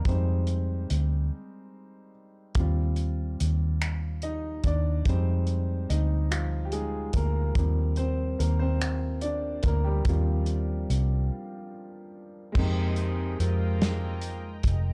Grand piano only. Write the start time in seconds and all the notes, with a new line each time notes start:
0.05 G3 G#3 C4 D#4 C5
2.56 G3 C4 F4
4.23 D#4 D#5
4.65 D4 D5
5.06 G3 G#3 C4 D#4 C5
5.90 D#4 D#5
6.31 F3 F4
6.65 G4
6.72 G#3 D#4 G4 G#4
7.14 A#3 A#4
7.56 F3 G3 C4
7.97 C4 C5
8.39 A#3 A#4
8.59 C4 C5
9.22 D4 D5
9.63 A#3 A#4
9.84 G3 G4
10.05 F3 G3 C4 F4
12.52 G#3 A#3
12.56 C4 D#4
12.61 G4